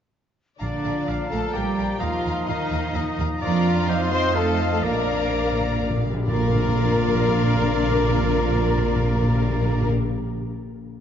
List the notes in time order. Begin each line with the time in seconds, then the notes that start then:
0.60 A#1 A#2 D3 F3 A#3 D4 F4 D5 F5 A#5
0.84 A#1 F5 A#5
1.08 A#1 F5 A#5
1.30 A#1 A3 A4 F5 A5 A#5
1.53 A#1 G3 G4 D5 F5 G5 A#5
1.78 A#1 F5 A#5
2.00 D#2 F3 D#4 F4 D#5 F5 A#5
2.25 D#2 F5 A#5
2.47 D#2 D#3 D#4 D#5 F5 A#5
2.51 D#4
2.72 D#2 F5 A#5
2.93 D#2 D#5 F5 A#5
3.19 D#2 F5 A#5
3.41 F2 F3 A#3 F4 D5 F5 A#5
3.45 D4
3.88 F2 F3 C4 D#4 C5 D#5 F5
4.13 C4 C5 C6
4.34 F2 F3 A3 C4 D#4 A4 D#5 F5 A5
4.38 F5
4.72 A3 A4 A5
4.83 A#1 F2 A#2 F3 A#3 D4 A#4 D5 F5 A#5
4.92 A#2
5.07 A#2
5.13 A#2
5.22 A#2
5.29 A#2
5.37 A#2
5.45 A#2
5.52 A#2
5.60 A#2
5.69 A#2
5.75 A#2
5.82 A#2
5.90 A#2
5.97 A#2
6.05 A#2
6.13 A#2
6.27 A#1 F2 A#2 F3 A#3 D4 F4 A#4 D5 F5 A#5
6.34 A#2
6.41 A#2
6.48 A#2
6.55 A#2
6.61 A#2
6.68 A#2
6.75 A#2
6.81 A#2
6.88 A#2
6.95 A#2
7.01 A#2
7.08 A#2
7.14 A#2
7.21 A#2
7.28 A#2
7.35 A#2
7.42 A#2
7.48 A#2
7.55 A#2
7.61 A#2
7.68 A#2
7.75 A#2
7.82 A#2
7.88 A#2
7.96 A#2
8.02 A#2
8.09 A#2
8.16 A#2
8.22 A#2
8.29 A#2
8.36 A#2
8.42 A#2
8.49 A#2
8.55 A#2
8.62 A#2
8.69 A#2
8.76 A#2
8.82 A#2
8.89 A#2
8.96 A#2
9.02 A#2
9.09 A#2
9.15 A#2
9.22 A#2
9.29 A#2
9.35 A#2
9.41 A#2
9.49 A#2
9.55 A#2
9.62 A#2
9.69 A#2
9.75 A#2
9.82 A#2
9.89 A#2